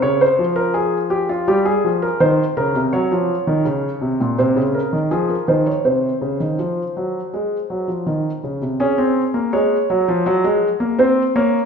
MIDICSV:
0, 0, Header, 1, 2, 480
1, 0, Start_track
1, 0, Key_signature, -5, "major"
1, 0, Tempo, 724638
1, 24, Time_signature, 4, 2, 24, 8
1, 3384, Tempo, 734394
1, 7661, End_track
2, 0, Start_track
2, 0, Title_t, "Grand piano"
2, 0, Program_c, 0, 0
2, 15, Note_on_c, 0, 73, 83
2, 16, Note_on_c, 0, 49, 72
2, 135, Note_off_c, 0, 73, 0
2, 140, Note_on_c, 0, 72, 74
2, 167, Note_off_c, 0, 49, 0
2, 257, Note_on_c, 0, 53, 67
2, 289, Note_off_c, 0, 72, 0
2, 369, Note_on_c, 0, 70, 77
2, 490, Note_on_c, 0, 68, 74
2, 491, Note_off_c, 0, 70, 0
2, 642, Note_off_c, 0, 68, 0
2, 730, Note_on_c, 0, 67, 76
2, 851, Note_off_c, 0, 67, 0
2, 856, Note_on_c, 0, 65, 73
2, 956, Note_off_c, 0, 53, 0
2, 974, Note_off_c, 0, 65, 0
2, 978, Note_on_c, 0, 55, 74
2, 979, Note_on_c, 0, 67, 80
2, 1095, Note_on_c, 0, 68, 80
2, 1096, Note_off_c, 0, 67, 0
2, 1128, Note_off_c, 0, 55, 0
2, 1221, Note_on_c, 0, 53, 65
2, 1245, Note_off_c, 0, 68, 0
2, 1340, Note_on_c, 0, 70, 69
2, 1369, Note_off_c, 0, 53, 0
2, 1456, Note_off_c, 0, 70, 0
2, 1459, Note_on_c, 0, 51, 71
2, 1460, Note_on_c, 0, 72, 77
2, 1607, Note_off_c, 0, 51, 0
2, 1608, Note_off_c, 0, 72, 0
2, 1701, Note_on_c, 0, 49, 69
2, 1702, Note_on_c, 0, 70, 74
2, 1816, Note_off_c, 0, 49, 0
2, 1822, Note_on_c, 0, 48, 60
2, 1849, Note_off_c, 0, 70, 0
2, 1937, Note_off_c, 0, 48, 0
2, 1938, Note_on_c, 0, 73, 71
2, 1942, Note_on_c, 0, 54, 77
2, 2056, Note_off_c, 0, 54, 0
2, 2063, Note_on_c, 0, 53, 70
2, 2210, Note_off_c, 0, 53, 0
2, 2300, Note_on_c, 0, 51, 71
2, 2416, Note_off_c, 0, 51, 0
2, 2419, Note_on_c, 0, 49, 72
2, 2568, Note_off_c, 0, 49, 0
2, 2659, Note_on_c, 0, 48, 64
2, 2776, Note_off_c, 0, 48, 0
2, 2785, Note_on_c, 0, 46, 68
2, 2873, Note_off_c, 0, 73, 0
2, 2899, Note_off_c, 0, 46, 0
2, 2904, Note_on_c, 0, 72, 64
2, 2906, Note_on_c, 0, 48, 73
2, 3020, Note_off_c, 0, 48, 0
2, 3021, Note_on_c, 0, 49, 70
2, 3052, Note_off_c, 0, 72, 0
2, 3143, Note_on_c, 0, 70, 59
2, 3170, Note_off_c, 0, 49, 0
2, 3264, Note_on_c, 0, 51, 62
2, 3292, Note_off_c, 0, 70, 0
2, 3380, Note_off_c, 0, 51, 0
2, 3386, Note_on_c, 0, 53, 71
2, 3386, Note_on_c, 0, 68, 59
2, 3500, Note_off_c, 0, 68, 0
2, 3507, Note_on_c, 0, 70, 49
2, 3534, Note_off_c, 0, 53, 0
2, 3621, Note_off_c, 0, 70, 0
2, 3626, Note_on_c, 0, 51, 65
2, 3628, Note_on_c, 0, 72, 59
2, 3742, Note_off_c, 0, 72, 0
2, 3747, Note_on_c, 0, 73, 54
2, 3775, Note_off_c, 0, 51, 0
2, 3863, Note_off_c, 0, 73, 0
2, 3868, Note_on_c, 0, 48, 54
2, 3868, Note_on_c, 0, 72, 58
2, 4017, Note_off_c, 0, 48, 0
2, 4106, Note_on_c, 0, 49, 57
2, 4224, Note_off_c, 0, 49, 0
2, 4229, Note_on_c, 0, 51, 49
2, 4346, Note_off_c, 0, 51, 0
2, 4350, Note_on_c, 0, 53, 55
2, 4499, Note_off_c, 0, 53, 0
2, 4598, Note_on_c, 0, 54, 54
2, 4745, Note_off_c, 0, 54, 0
2, 4839, Note_on_c, 0, 56, 60
2, 4986, Note_off_c, 0, 56, 0
2, 5078, Note_on_c, 0, 54, 55
2, 5192, Note_off_c, 0, 54, 0
2, 5193, Note_on_c, 0, 53, 46
2, 5310, Note_off_c, 0, 53, 0
2, 5316, Note_on_c, 0, 51, 57
2, 5464, Note_off_c, 0, 51, 0
2, 5530, Note_off_c, 0, 72, 0
2, 5558, Note_on_c, 0, 49, 53
2, 5673, Note_off_c, 0, 49, 0
2, 5676, Note_on_c, 0, 48, 48
2, 5792, Note_off_c, 0, 48, 0
2, 5796, Note_on_c, 0, 61, 83
2, 5796, Note_on_c, 0, 68, 73
2, 5912, Note_off_c, 0, 61, 0
2, 5914, Note_on_c, 0, 60, 79
2, 6063, Note_off_c, 0, 60, 0
2, 6150, Note_on_c, 0, 58, 71
2, 6261, Note_off_c, 0, 68, 0
2, 6268, Note_off_c, 0, 58, 0
2, 6272, Note_on_c, 0, 73, 69
2, 6274, Note_on_c, 0, 56, 76
2, 6422, Note_off_c, 0, 56, 0
2, 6515, Note_on_c, 0, 54, 79
2, 6629, Note_off_c, 0, 54, 0
2, 6635, Note_on_c, 0, 53, 80
2, 6749, Note_off_c, 0, 53, 0
2, 6751, Note_on_c, 0, 54, 91
2, 6867, Note_off_c, 0, 54, 0
2, 6870, Note_on_c, 0, 56, 83
2, 7017, Note_off_c, 0, 56, 0
2, 7104, Note_on_c, 0, 58, 75
2, 7200, Note_off_c, 0, 73, 0
2, 7221, Note_off_c, 0, 58, 0
2, 7225, Note_on_c, 0, 60, 87
2, 7229, Note_on_c, 0, 72, 73
2, 7373, Note_off_c, 0, 60, 0
2, 7376, Note_off_c, 0, 72, 0
2, 7467, Note_on_c, 0, 58, 89
2, 7468, Note_on_c, 0, 73, 70
2, 7614, Note_off_c, 0, 58, 0
2, 7615, Note_off_c, 0, 73, 0
2, 7661, End_track
0, 0, End_of_file